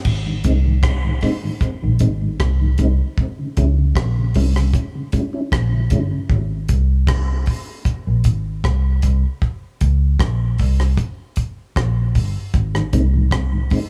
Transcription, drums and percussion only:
0.05 kick, crash
0.44 kick, closed hi-hat
0.83 kick, cross-stick
1.21 kick, open hi-hat
1.61 kick, hi-hat pedal
1.99 kick, closed hi-hat
2.40 kick, cross-stick
2.78 kick, closed hi-hat
3.18 kick
3.57 kick, closed hi-hat
3.95 kick, cross-stick
4.34 kick, open hi-hat
4.56 cross-stick
4.74 kick, hi-hat pedal
5.12 kick, closed hi-hat
5.52 kick, cross-stick
5.90 kick, closed hi-hat
6.30 kick
6.69 kick, closed hi-hat
7.07 kick, cross-stick
7.46 kick, open hi-hat
7.85 kick, hi-hat pedal
8.24 kick, closed hi-hat
8.64 kick, cross-stick
9.02 kick, closed hi-hat
9.42 kick
9.81 kick, closed hi-hat
10.20 kick, cross-stick
10.58 kick, open hi-hat
10.80 cross-stick
10.97 kick, hi-hat pedal
11.36 kick, closed hi-hat
11.76 kick, cross-stick
12.15 kick, open hi-hat
12.53 kick, hi-hat pedal
12.75 cross-stick
12.93 kick, closed hi-hat
13.31 kick, cross-stick
13.70 kick, open hi-hat

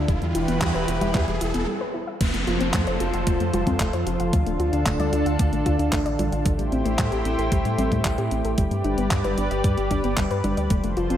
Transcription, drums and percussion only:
0.08 kick, closed hi-hat
0.22 closed hi-hat
0.35 closed hi-hat
0.48 closed hi-hat
0.61 kick, clap, closed hi-hat
0.75 closed hi-hat
0.88 closed hi-hat
1.01 closed hi-hat, high conga
1.15 kick, clap, closed hi-hat
1.28 closed hi-hat
1.41 closed hi-hat
1.54 closed hi-hat
2.21 kick, closed hi-hat, crash
2.34 closed hi-hat
2.47 closed hi-hat
2.61 closed hi-hat
2.74 kick, clap, closed hi-hat
2.87 closed hi-hat
3.00 closed hi-hat
3.14 closed hi-hat
3.27 kick, closed hi-hat
3.40 closed hi-hat
3.54 closed hi-hat, high conga
3.67 kick, closed hi-hat, high conga
3.80 kick, clap, closed hi-hat
3.93 closed hi-hat
4.07 closed hi-hat
4.20 closed hi-hat
4.33 kick, closed hi-hat
4.46 closed hi-hat
4.60 closed hi-hat
4.73 closed hi-hat
4.86 kick, clap, closed hi-hat
5.00 closed hi-hat, high conga
5.13 closed hi-hat
5.26 closed hi-hat
5.39 kick, closed hi-hat
5.53 closed hi-hat
5.66 kick, closed hi-hat
5.79 closed hi-hat
5.93 kick, clap, closed hi-hat
6.06 closed hi-hat
6.19 closed hi-hat, high conga
6.32 closed hi-hat
6.46 kick, closed hi-hat
6.59 closed hi-hat
6.72 closed hi-hat
6.86 closed hi-hat
6.99 kick, clap, closed hi-hat
7.12 closed hi-hat
7.25 closed hi-hat
7.39 closed hi-hat
7.52 kick, closed hi-hat
7.65 closed hi-hat
7.78 closed hi-hat, high conga
7.92 kick, closed hi-hat, high conga
8.05 kick, clap, closed hi-hat
8.18 closed hi-hat
8.31 closed hi-hat
8.45 closed hi-hat
8.58 kick, closed hi-hat
8.71 closed hi-hat
8.84 closed hi-hat
8.98 closed hi-hat
9.11 kick, clap, closed hi-hat
9.24 closed hi-hat, high conga
9.38 closed hi-hat
9.51 closed hi-hat
9.64 kick, closed hi-hat
9.78 closed hi-hat
9.91 kick, closed hi-hat
10.04 closed hi-hat
10.17 kick, clap, closed hi-hat
10.31 closed hi-hat
10.44 closed hi-hat, high conga
10.57 closed hi-hat
10.70 kick, closed hi-hat
10.84 closed hi-hat
10.97 closed hi-hat
11.10 closed hi-hat

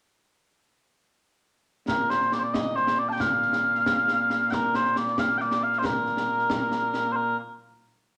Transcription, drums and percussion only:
1.88 concert bass drum, snare
2.10 snare
2.21 snare
2.32 snare
2.54 concert bass drum, snare
2.76 snare
2.87 snare
3.20 concert bass drum, snare
3.42 snare
3.53 snare
3.75 snare
3.86 concert bass drum, snare
4.08 snare
4.30 snare
4.52 concert bass drum, snare
4.74 snare
4.85 snare
4.96 snare
5.08 snare
5.18 concert bass drum, snare
5.40 snare
5.51 snare
5.73 snare
5.84 concert bass drum, snare
6.06 snare
6.17 snare
6.39 snare
6.50 concert bass drum, snare
6.72 snare
6.94 snare

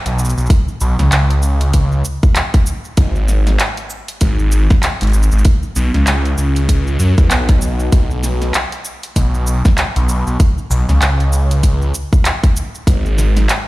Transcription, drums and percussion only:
0.06 closed hi-hat, shaker
0.19 shaker
0.25 shaker
0.30 shaker
0.38 shaker
0.40 shaker
0.46 kick, shaker
0.50 closed hi-hat, shaker
0.68 shaker
0.81 shaker
0.99 snare, closed hi-hat, shaker
1.12 clap, closed hi-hat, shaker
1.31 closed hi-hat, shaker
1.43 shaker
1.61 closed hi-hat, shaker
1.74 kick, closed hi-hat, shaker
1.92 shaker
2.05 shaker
2.23 kick, shaker
2.36 clap, closed hi-hat, shaker
2.54 kick, closed hi-hat, shaker
2.67 shaker
2.85 shaker
2.97 kick, closed hi-hat, shaker
3.16 shaker
3.28 snare, shaker
3.47 snare, closed hi-hat, shaker
3.60 clap, closed hi-hat, shaker
3.77 closed hi-hat, shaker
3.90 shaker
4.08 closed hi-hat, shaker
4.21 kick, closed hi-hat, shaker
4.39 shaker
4.52 shaker
4.70 kick, snare, shaker
4.83 clap, closed hi-hat, shaker
5.01 closed hi-hat, shaker
5.03 closed hi-hat
5.07 closed hi-hat
5.10 closed hi-hat
5.12 closed hi-hat, shaker
5.23 shaker
5.32 shaker
5.38 shaker
5.45 kick, closed hi-hat, shaker
5.63 shaker
5.76 shaker
5.94 snare, closed hi-hat
6.07 clap, closed hi-hat, shaker
6.26 closed hi-hat, shaker
6.38 shaker
6.56 closed hi-hat, shaker
6.69 kick, closed hi-hat, shaker
6.87 shaker
7.00 shaker
7.18 kick, closed hi-hat, shaker
7.31 clap, closed hi-hat, shaker
7.49 kick, closed hi-hat, shaker
7.62 shaker
7.80 shaker
7.92 kick, closed hi-hat, shaker
8.11 shaker
8.23 snare, shaker
8.42 snare, closed hi-hat, shaker
8.54 clap, closed hi-hat, shaker
8.72 closed hi-hat, shaker
8.85 shaker
9.03 closed hi-hat, shaker
9.16 kick, closed hi-hat, shaker
9.34 shaker
9.47 shaker
9.65 kick, snare, shaker
9.78 clap, closed hi-hat, shaker
9.96 closed hi-hat, shaker
10.09 shaker
10.27 shaker
10.40 kick, closed hi-hat, shaker
10.58 shaker
10.71 shaker
10.89 snare, closed hi-hat, shaker
11.02 clap, closed hi-hat, shaker
11.20 closed hi-hat, shaker
11.33 shaker
11.51 closed hi-hat, shaker
11.63 kick, closed hi-hat, shaker
11.82 shaker
11.94 shaker
12.13 kick, shaker
12.25 clap, closed hi-hat, shaker
12.44 kick, closed hi-hat, shaker
12.57 shaker
12.75 shaker
12.87 kick, closed hi-hat, shaker
13.06 shaker
13.18 snare, shaker
13.37 snare, closed hi-hat, shaker
13.49 clap, closed hi-hat, shaker

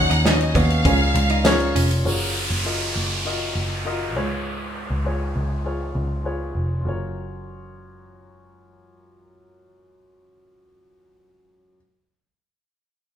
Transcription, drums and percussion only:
0.11 ride
0.26 snare, ride
0.41 ride
0.55 kick, ride
0.70 ride
0.85 kick, ride
1.15 ride
1.30 ride
1.45 snare, ride
1.60 ride
1.76 open hi-hat, ride
1.91 ride

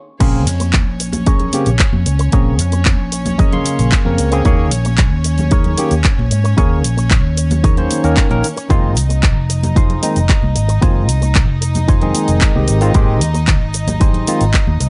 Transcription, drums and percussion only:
0.20 kick, closed hi-hat, crash, high conga, shaker
0.47 open hi-hat, shaker
0.60 closed hi-hat, high conga, shaker
0.73 kick, clap, closed hi-hat, shaker
1.00 open hi-hat, shaker
1.12 closed hi-hat, high conga, low conga, shaker
1.26 kick, closed hi-hat, shaker
1.39 closed hi-hat, low conga
1.52 open hi-hat, high conga, shaker
1.66 closed hi-hat, shaker
1.79 kick, clap, closed hi-hat, shaker
1.93 high conga
2.06 open hi-hat, shaker
2.19 closed hi-hat, shaker
2.32 kick, closed hi-hat, high conga, shaker
2.59 open hi-hat, shaker
2.72 closed hi-hat, high conga, shaker
2.85 kick, clap, closed hi-hat, shaker
3.12 open hi-hat, shaker
3.25 closed hi-hat, high conga, low conga, shaker
3.39 kick, closed hi-hat, shaker
3.53 closed hi-hat, low conga
3.65 open hi-hat, high conga, shaker
3.79 closed hi-hat, shaker
3.92 kick, clap, closed hi-hat, shaker
4.06 high conga
4.18 open hi-hat, shaker
4.32 closed hi-hat, shaker
4.45 kick, closed hi-hat, high conga, shaker
4.71 open hi-hat, shaker
4.85 closed hi-hat, high conga, shaker
4.98 kick, clap, closed hi-hat, shaker
5.24 open hi-hat, shaker
5.38 closed hi-hat, high conga, low conga, shaker
5.51 kick, closed hi-hat, shaker
5.64 closed hi-hat, low conga
5.78 open hi-hat, high conga, shaker
5.91 closed hi-hat, shaker
6.04 kick, clap, closed hi-hat, shaker
6.19 high conga
6.31 open hi-hat, shaker
6.45 closed hi-hat, shaker
6.58 kick, closed hi-hat, high conga, shaker
6.84 open hi-hat, shaker
6.97 closed hi-hat, high conga, shaker
7.11 kick, clap, closed hi-hat, shaker
7.37 open hi-hat, shaker
7.50 closed hi-hat, high conga, low conga, shaker
7.64 kick, closed hi-hat, shaker
7.77 closed hi-hat, low conga
7.90 open hi-hat, high conga, shaker
8.04 closed hi-hat, shaker
8.17 kick, clap, closed hi-hat, shaker
8.30 closed hi-hat, high conga
8.43 open hi-hat, shaker
8.57 closed hi-hat, shaker
8.69 kick, closed hi-hat, high conga, shaker
8.95 open hi-hat, shaker
8.97 shaker
9.09 closed hi-hat, high conga, shaker
9.23 kick, clap, closed hi-hat, shaker
9.50 open hi-hat, shaker
9.63 closed hi-hat, high conga, low conga, shaker
9.76 kick, closed hi-hat, shaker
9.90 closed hi-hat, low conga
10.03 open hi-hat, high conga, shaker
10.16 closed hi-hat, shaker
10.29 kick, clap, closed hi-hat, shaker
10.42 high conga
10.56 open hi-hat, shaker
10.69 closed hi-hat, shaker
10.82 kick, closed hi-hat, high conga, shaker
11.09 open hi-hat, shaker
11.21 closed hi-hat, high conga, shaker
11.34 kick, clap, closed hi-hat, shaker
11.62 open hi-hat, shaker
11.74 closed hi-hat, high conga, low conga, shaker
11.88 kick, closed hi-hat, shaker
12.01 closed hi-hat, low conga
12.15 open hi-hat, high conga, shaker
12.28 closed hi-hat, shaker
12.41 kick, clap, closed hi-hat, shaker
12.55 high conga
12.68 open hi-hat, shaker
12.81 closed hi-hat, shaker
12.94 kick, closed hi-hat, high conga, shaker
13.21 open hi-hat, shaker
13.34 closed hi-hat, high conga, shaker
13.47 kick, clap, closed hi-hat, shaker
13.73 open hi-hat, shaker
13.87 closed hi-hat, high conga, low conga, shaker
14.00 kick, closed hi-hat, shaker
14.14 closed hi-hat, low conga
14.27 open hi-hat, high conga, shaker
14.40 closed hi-hat, shaker
14.54 kick, clap, closed hi-hat, shaker
14.67 high conga
14.81 open hi-hat, shaker

